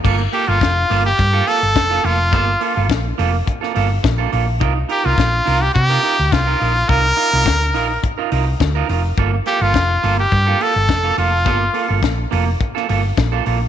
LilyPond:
<<
  \new Staff \with { instrumentName = "Trumpet" } { \time 4/4 \key g \minor \tempo 4 = 105 r8 g'16 f'4 g'8. a'4 f'8~ | f'4 r2. | r8 g'16 f'4 g'16 g'4 f'4 | bes'2 r2 |
r8 g'16 f'4 g'8. a'4 f'8~ | f'4 r2. | }
  \new Staff \with { instrumentName = "Clean electric guitar" } { \time 4/4 \key g \minor <bes f' a'>16 r16 <bes f' a'>16 <bes f' a'>16 r8 <bes f' a'>16 r8 <bes f' a'>16 <bes f' a'>16 r8 <bes f' a'>16 <bes f' a'>16 r16 | <bes f' a'>16 r16 <bes f' a'>16 <bes f' a'>16 r8 <bes f' a'>16 r8 <bes f' a'>16 <bes f' a'>16 r8 <bes f' a'>16 <bes f' a'>16 r16 | <ees' f' bes'>16 r16 <ees' f' bes'>16 <ees' f' bes'>16 r8 <ees' f' bes'>16 r8 <ees' f' bes'>16 <ees' f' bes'>16 r8 <ees' f' bes'>16 <ees' f' bes'>16 r16 | <ees' f' bes'>16 r16 <ees' f' bes'>16 <ees' f' bes'>16 r8 <ees' f' bes'>16 r8 <ees' f' bes'>16 <ees' f' bes'>16 r8 <ees' f' bes'>16 <ees' f' bes'>16 r16 |
<bes f' a'>16 r16 <bes f' a'>16 <bes f' a'>16 r8 <bes f' a'>16 r8 <bes f' a'>16 <bes f' a'>16 r8 <bes f' a'>16 <bes f' a'>16 r16 | <bes f' a'>16 r16 <bes f' a'>16 <bes f' a'>16 r8 <bes f' a'>16 r8 <bes f' a'>16 <bes f' a'>16 r8 <bes f' a'>16 <bes f' a'>16 r16 | }
  \new Staff \with { instrumentName = "Fingered electric bass" } { \clef bass \time 4/4 \key g \minor g,,8 r16 g,,16 f,,8 g,,8 g,8 r16 g,,16 f,,8 f,,8 | g,,8 r16 g,,16 bes,,8 f,,8 r8 g,,8 bes,,8 bes,,8 | c,8 r16 c,16 bes,,8 c,8 c8 r16 d,16 c,8 bes,,8 | c,8 r16 c,16 d,8 bes,,8 r8 c,8 d,8 f,,8 |
g,,8 r16 g,,16 f,,8 g,,8 g,8 r16 g,,16 f,,8 f,,8 | g,,8 r16 g,,16 bes,,8 f,,8 r8 g,,8 bes,,8 bes,,8 | }
  \new DrumStaff \with { instrumentName = "Drums" } \drummode { \time 4/4 <cymc bd>8 hho8 <hh bd sn>8 hho8 <hh bd>8 hho8 <hh bd sn>8 hho8 | <hh bd>8 hho8 <hh bd sn>8 hho8 <hh bd>16 sn16 hho8 <hh bd sn>8 hho8 | <hh bd>8 hho8 <hh bd sn>8 hho8 <hh bd>8 hho8 <hh bd sn>8 hho8 | <hh bd>8 hho8 <hh bd sn>8 hho8 <hh bd>8 hho8 <hh bd sn>8 hho8 |
<hh bd>8 hho8 <hh bd sn>8 hho8 <hh bd>8 hho8 <hh bd sn>8 hho8 | <hh bd>8 hho8 <hh bd sn>8 hho8 <hh bd>16 sn16 hho8 <hh bd sn>8 hho8 | }
>>